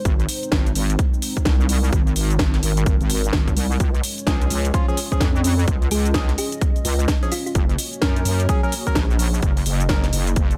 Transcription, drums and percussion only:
0.05 kick, closed hi-hat, shaker
0.20 closed hi-hat, shaker
0.29 open hi-hat, shaker
0.43 closed hi-hat, shaker
0.52 kick, snare, closed hi-hat, shaker
0.67 closed hi-hat, shaker
0.75 open hi-hat, shaker
0.90 closed hi-hat, shaker
0.99 kick, closed hi-hat, shaker
1.14 shaker
1.22 open hi-hat, shaker
1.37 kick, closed hi-hat, shaker
1.45 kick, snare, closed hi-hat, shaker
1.60 shaker
1.69 open hi-hat, shaker
1.84 shaker
1.93 kick, closed hi-hat, shaker
2.07 closed hi-hat, shaker
2.16 open hi-hat, shaker
2.30 closed hi-hat, shaker
2.39 kick, snare, closed hi-hat, shaker
2.54 snare, closed hi-hat, shaker
2.63 open hi-hat, shaker
2.77 closed hi-hat, shaker
2.86 kick, closed hi-hat, shaker
3.01 closed hi-hat, shaker
3.10 open hi-hat, shaker
3.24 closed hi-hat, shaker
3.33 kick, snare, closed hi-hat, shaker
3.48 kick, closed hi-hat, shaker
3.57 open hi-hat, shaker
3.71 shaker
3.80 kick, closed hi-hat, shaker
3.95 closed hi-hat, shaker
4.04 open hi-hat, shaker
4.18 closed hi-hat, shaker
4.27 kick, snare, closed hi-hat, shaker
4.42 closed hi-hat, shaker
4.50 open hi-hat, shaker
4.65 closed hi-hat, shaker
4.74 kick, closed hi-hat, shaker
4.89 shaker
4.97 open hi-hat, shaker
5.12 kick, closed hi-hat, shaker
5.21 kick, snare, closed hi-hat, shaker
5.36 shaker
5.44 open hi-hat, shaker
5.59 shaker
5.68 kick, closed hi-hat, shaker
5.82 closed hi-hat, shaker
5.91 open hi-hat, shaker
6.05 closed hi-hat, shaker
6.14 kick, snare, closed hi-hat, shaker
6.29 snare, closed hi-hat, shaker
6.38 open hi-hat, shaker
6.52 closed hi-hat, shaker
6.61 kick, closed hi-hat, shaker
6.76 closed hi-hat, shaker
6.85 open hi-hat, shaker
6.99 closed hi-hat, shaker
7.08 kick, snare, closed hi-hat, shaker
7.23 closed hi-hat, shaker
7.32 open hi-hat, shaker
7.46 shaker
7.55 kick, closed hi-hat, shaker
7.69 closed hi-hat, shaker
7.78 open hi-hat, shaker
7.93 closed hi-hat, shaker
8.02 kick, snare, closed hi-hat, shaker
8.16 closed hi-hat, shaker
8.25 open hi-hat, shaker
8.40 closed hi-hat, shaker
8.49 kick, closed hi-hat, shaker
8.64 shaker
8.72 open hi-hat, shaker
8.87 kick, closed hi-hat, shaker
8.95 kick, snare, closed hi-hat, shaker
9.10 shaker
9.19 open hi-hat, shaker
9.34 shaker
9.43 kick, closed hi-hat, shaker
9.57 open hi-hat, shaker
9.66 open hi-hat, shaker
9.80 closed hi-hat, shaker
9.89 kick, snare, closed hi-hat, shaker
10.03 snare, closed hi-hat, shaker
10.13 open hi-hat, shaker
10.27 closed hi-hat, shaker
10.36 kick, closed hi-hat, shaker
10.51 closed hi-hat, shaker

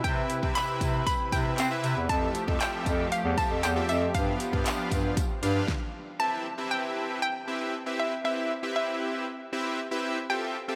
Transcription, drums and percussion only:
0.04 kick, closed hi-hat, tambourine
0.30 closed hi-hat, tambourine
0.43 kick
0.55 clap, closed hi-hat, tambourine
0.81 kick, closed hi-hat, tambourine
1.07 kick, closed hi-hat, tambourine
1.32 kick, closed hi-hat, tambourine
1.58 clap, closed hi-hat, tambourine
1.84 closed hi-hat, tambourine
2.09 kick, closed hi-hat, tambourine
2.35 closed hi-hat, tambourine
2.48 kick
2.60 clap, closed hi-hat, tambourine
2.86 kick, closed hi-hat, tambourine
3.12 closed hi-hat, tambourine
3.38 kick, closed hi-hat, tambourine
3.63 clap, closed hi-hat, tambourine
3.89 closed hi-hat, tambourine
4.14 kick, closed hi-hat, tambourine
4.40 closed hi-hat, tambourine
4.53 kick
4.66 clap, closed hi-hat, tambourine
4.91 kick, closed hi-hat, tambourine
5.17 kick, closed hi-hat, tambourine
5.43 closed hi-hat, tambourine
5.68 kick, snare

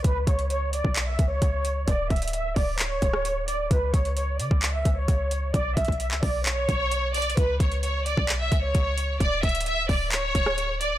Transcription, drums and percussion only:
0.04 kick, closed hi-hat
0.27 kick, closed hi-hat
0.39 closed hi-hat
0.50 closed hi-hat
0.73 closed hi-hat
0.85 kick
0.96 clap, closed hi-hat
1.19 kick, closed hi-hat
1.42 kick, closed hi-hat
1.65 closed hi-hat
1.88 kick, closed hi-hat
2.10 kick, closed hi-hat
2.16 closed hi-hat
2.22 closed hi-hat
2.28 closed hi-hat
2.33 closed hi-hat
2.56 kick, open hi-hat
2.79 clap, closed hi-hat
3.02 kick, closed hi-hat
3.13 cross-stick
3.25 closed hi-hat
3.48 closed hi-hat
3.71 kick, closed hi-hat
3.94 kick, closed hi-hat
4.05 closed hi-hat
4.17 closed hi-hat
4.40 closed hi-hat
4.51 kick
4.62 clap, closed hi-hat
4.85 kick, closed hi-hat
5.08 kick, closed hi-hat
5.31 closed hi-hat
5.54 kick, closed hi-hat
5.77 kick, closed hi-hat
5.85 kick, closed hi-hat
5.92 closed hi-hat
6.00 closed hi-hat
6.11 clap
6.23 kick, open hi-hat
6.46 clap, closed hi-hat
6.69 kick, closed hi-hat
6.91 closed hi-hat
7.14 closed hi-hat, open hi-hat
7.22 closed hi-hat
7.30 closed hi-hat
7.37 kick, closed hi-hat
7.60 kick, closed hi-hat
7.72 closed hi-hat
7.83 closed hi-hat
8.06 closed hi-hat
8.17 kick
8.29 clap, closed hi-hat
8.52 kick, closed hi-hat
8.75 kick, closed hi-hat
8.98 closed hi-hat
9.20 kick, closed hi-hat
9.43 kick, closed hi-hat
9.49 closed hi-hat
9.55 closed hi-hat
9.61 closed hi-hat
9.66 closed hi-hat
9.89 kick, open hi-hat
10.12 clap, closed hi-hat
10.35 kick, closed hi-hat
10.46 cross-stick
10.58 closed hi-hat
10.81 closed hi-hat

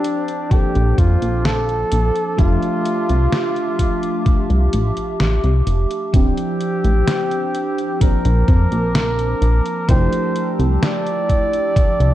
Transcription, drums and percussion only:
0.04 closed hi-hat
0.28 closed hi-hat
0.51 kick, closed hi-hat
0.75 closed hi-hat
0.98 kick, closed hi-hat
1.22 closed hi-hat
1.45 snare, closed hi-hat
1.69 closed hi-hat
1.92 closed hi-hat
2.16 closed hi-hat
2.39 kick, closed hi-hat
2.63 closed hi-hat
2.86 closed hi-hat
3.09 closed hi-hat
3.33 snare, closed hi-hat
3.56 closed hi-hat
3.79 kick, closed hi-hat
4.03 closed hi-hat
4.26 kick, closed hi-hat
4.50 closed hi-hat
4.73 closed hi-hat
4.97 closed hi-hat
5.20 snare, closed hi-hat
5.44 closed hi-hat
5.67 closed hi-hat
5.91 closed hi-hat
6.14 kick, closed hi-hat
6.38 closed hi-hat
6.61 closed hi-hat
6.84 closed hi-hat
7.08 snare, closed hi-hat
7.31 closed hi-hat
7.55 closed hi-hat
7.78 closed hi-hat
8.01 kick, closed hi-hat
8.25 closed hi-hat
8.48 kick, closed hi-hat
8.72 closed hi-hat
8.95 snare, closed hi-hat
9.19 closed hi-hat
9.42 closed hi-hat
9.66 closed hi-hat
9.89 kick, closed hi-hat
10.13 closed hi-hat
10.36 closed hi-hat
10.60 closed hi-hat
10.83 snare, closed hi-hat
11.07 closed hi-hat
11.29 kick, closed hi-hat
11.53 closed hi-hat
11.76 kick, closed hi-hat
12.00 closed hi-hat

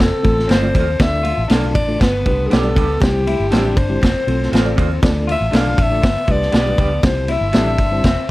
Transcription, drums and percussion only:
0.00 kick, snare
0.24 kick, ride, muted conga, high conga
0.39 snare
0.49 snare, ride, high conga
0.63 high conga
0.74 kick, ride, low conga
0.99 kick, snare, ride, low conga
1.25 ride, muted conga, high conga
1.50 snare, ride, muted conga
1.64 high conga, low conga
1.75 kick, ride, muted conga
2.00 kick, snare, ride, muted conga
2.26 kick, ride, high conga
2.51 snare, ride, muted conga, high conga
2.64 high conga
2.76 kick, ride, muted conga, low conga
3.00 kick, snare, ride, muted conga, low conga
3.27 ride, high conga
3.52 snare, ride, muted conga
3.65 high conga, low conga
3.77 kick, ride
4.02 kick, snare, ride, muted conga
4.28 ride, high conga
4.42 snare
4.53 snare, ride, muted conga, high conga
4.66 high conga
4.78 kick, ride, muted conga, low conga
5.03 kick, snare, ride, muted conga, low conga
5.29 ride, muted conga, high conga
5.53 snare, ride
5.67 high conga, low conga
5.78 kick, ride
6.03 kick, snare, ride, muted conga
6.27 kick, ride, muted conga, high conga
6.42 snare
6.52 snare, ride, muted conga, high conga
6.67 high conga
6.78 kick, ride, muted conga, low conga
7.03 kick, snare, ride, muted conga, low conga
7.28 ride, muted conga, high conga
7.53 snare, ride, muted conga
7.66 high conga, low conga
7.78 kick, ride, muted conga
8.04 kick, snare, ride

